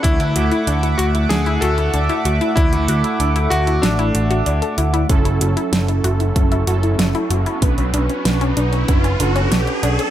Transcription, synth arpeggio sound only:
\new Staff \with { instrumentName = "Synth arpeggio sound" } { \time 4/4 \key fis \minor \tempo 4 = 95 d'16 e'16 fis'16 e'16 d'16 e'16 fis'16 e'16 d'16 e'16 fis'16 e'16 d'16 e'16 fis'16 e'16 | d'16 e'16 fis'16 e'16 d'16 e'16 fis'16 e'16 d'16 e'16 fis'16 fis'16 d''16 a'16 e'16 e'16 | cis'16 e'16 fis'16 e'16 cis'16 e'16 fis'16 e'16 cis'16 e'16 fis'16 e'16 cis'16 e'16 fis'16 e'16 | b16 cis'16 d'16 cis'16 b16 cis'16 d'16 cis'16 b16 cis'16 d'16 cis'16 b16 cis'16 d'16 cis'16 | }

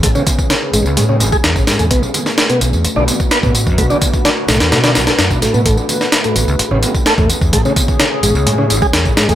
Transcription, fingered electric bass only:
\new Staff \with { instrumentName = "Fingered electric bass" } { \clef bass \time 4/4 \key a \major \tempo 4 = 128 a,,16 r4 r16 a,,16 cis,16 a,8 a,,16 r16 e,16 a,,16 r16 e,16 | b,,16 r4 r16 b,,16 e,16 r16 b,,16 r8. a,8 fis,16 | b,,16 r4 r16 b,,16 e,16 b,8 b,,16 r16 fis,16 b,,16 r16 a,16 | a,,16 r4 r16 a,,16 cis,16 r16 a,,16 r8. e,16 r16 e,16 |
a,,16 r4 r16 a,,16 cis,16 a,8 a,,16 r16 e,16 a,,16 r16 e,16 | }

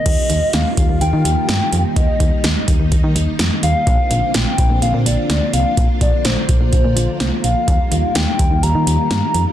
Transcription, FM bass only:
\new Staff \with { instrumentName = "FM bass" } { \clef bass \time 4/4 \key ees \major \tempo 4 = 126 ees,16 r16 ees,16 r16 ees,16 r16 ees,16 ees,16 ees,16 ees16 ees,16 r16 g,16 r16 f,16 r16 | ees,16 r16 ees,16 r16 ees,16 r16 ees,16 ees,16 ees,16 ees16 ees,16 r16 f,16 r16 ees,16 r16 | bes,,16 r16 bes,,16 r16 bes,,16 r16 bes,,16 bes,,16 bes,,16 bes,16 bes,,16 r16 d,16 r16 c,16 r16 | bes,,16 r16 bes,,16 r16 bes,,16 r16 bes,,16 bes,,16 bes,,16 bes,16 bes,,16 r16 c,16 r16 bes,,16 r16 |
ees,16 r16 ees,16 r16 ees,16 r16 ees,16 ees,16 ees,16 ees16 ees,16 r16 g,16 r16 f,16 r16 | }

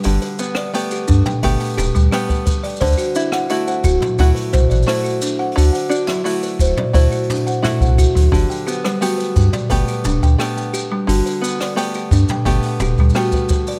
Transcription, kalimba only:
\new Staff \with { instrumentName = "Kalimba" } { \time 4/4 \key g \major \tempo 4 = 87 g'16 b'16 b'16 d''16 b'16 g'16 d'16 g''16 g'16 g''16 g'16 g16 g'16 b'16 b'16 d''16 | c''16 fis'16 d'16 fis''16 fis'16 fis''16 fis'16 fis16 fis'16 b'16 c''16 d''16 c''16 fis'16 d'16 fis''16 | fis'16 fis''16 fis'16 fis16 fis'16 b'16 c''16 d''16 c''16 fis'16 d'16 fis''16 fis'16 fis''16 fis'16 fis16 | g'16 g''16 g'16 g16 fis'16 b'16 b'16 d''16 b'16 g'16 d'16 g''16 g'16 g''16 g'16 g16 |
fis'16 b'16 b'16 d''16 b'16 g'16 d'16 g''16 g'16 g''16 g'16 g16 fis'16 b'16 b'16 d''16 | }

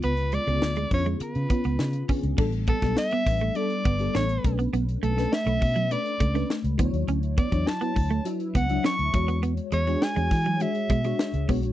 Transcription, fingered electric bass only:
\new Staff \with { instrumentName = "Fingered electric bass" } { \clef bass \time 4/4 \key a \mixolydian \tempo 4 = 102 cis,8. cis,16 d,8 eis,8 r16 cis16 r16 cis,16 cis8 r16 cis,16 | a,,8. b,,16 r8 a,,8 r8 g,,8 a,,8 b,,8 | b,,8 b,,8 r16 b,,16 b,8. r16 cis,8 r16 cis,16 d,16 dis,16 | d,8. e,16 r8 d,8 r8 cis,8 r16 d,16 e,8~ |
e,8 e,8 r16 e,16 e8. r16 b,8 r16 cis,16 b,,16 ais,,16 | }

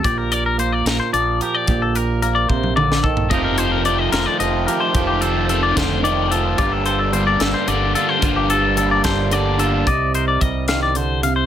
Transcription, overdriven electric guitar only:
\new Staff \with { instrumentName = "Overdriven electric guitar" } { \time 6/8 \key g \minor \tempo 4. = 73 r2. | r2. | <f, c ees a c' f'>8 <ees a c' f'>8 <ees a c' f'>8 <ees a c' f'>8 <ees a c' f'>8 <ees a c' f'>8 | <f, c ees a c' f'>8 <ees a c' f'>8 <ees a c' f'>8 <ees a c' f'>8 <ees a c' f'>8 <ees a c' f'>8 |
<g, d g bes d'>8 <g bes d'>8 <d g bes d'>8 <g bes d'>8 <d g bes d'>8 <g bes d'>8 | <g, d g bes d'>8 <g bes d'>8 <d g bes d'>8 <g bes d'>8 <d g bes d'>8 <g bes d'>8 | r2. | }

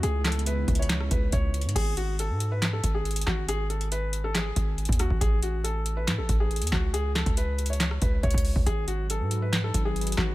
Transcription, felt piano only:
\new Staff \with { instrumentName = "Felt piano" } { \time 4/4 \key gis \phrygian \tempo 4 = 139 gis'8 a'8 b'8. cis''8. b'8 cis''4 | gis'8 fis'8 a'8. b'8 a'8 gis'8. fis'8 | gis'8 a'8 b'8. a'16 gis'4. fis'8 | gis'8 fis'8 a'8. b'8 a'8 gis'8. fis'8 |
gis'8 a'8 b'8. cis''8. b'8 cis''4 | gis'8 fis'8 a'8. b'8 a'8 gis'8. fis'8 | }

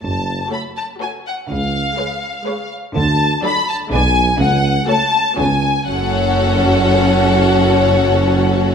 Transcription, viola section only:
\new Staff \with { instrumentName = "Viola section" } { \time 3/4 \key fis \minor \tempo 4 = 123 r4 <a fis'>4 <a fis'>4 | r4 <gis gis'>4 <gis gis'>4 | r4 <fis d'>4 <gis d'>4 | r4 <a fis'>4 <b eis'>4 |
<cis' fis'>2.~ | <cis' fis'>2. | }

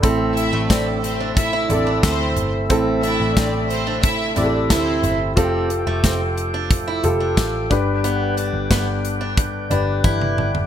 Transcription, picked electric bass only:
\new Staff \with { instrumentName = "Picked electric bass" } { \clef bass \time 4/4 \key g \mixolydian \tempo 4 = 90 a,,8. a,,16 a,,4. a,,8 d,8 g,,8 | a,,8. a,,16 a,,4. a,,8 d,8 g,,8 | f,,8. f,,16 f,,4. f,,8 a,,8 g,,8~ | g,,8. g,,16 g,,4. g,,8 g,,8 g,,8 | }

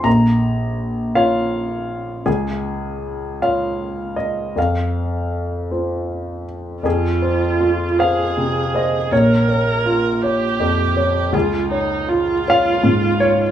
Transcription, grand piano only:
\new Staff \with { instrumentName = "Grand piano" } { \time 6/8 \key f \minor \tempo 4. = 53 << { bes''4. f''4. | aes'4. f''4 ees''8 | f''2~ f''8 r8 | aes'4. f''4 ees''8 |
des''2~ des''8 r8 | aes'4. f''4 des''8 | } \\ { bes,,4. <f' des''>4. | des,4. <f' des''>4. | f,4. <f' c''>4. | f,8 c''8 f'8 c''8 c8 c''8 |
bes,,8 des''8 f'8 des''8 f,8 des''8 | des,8 des''8 f'8 des''8 aes,4 | } >> }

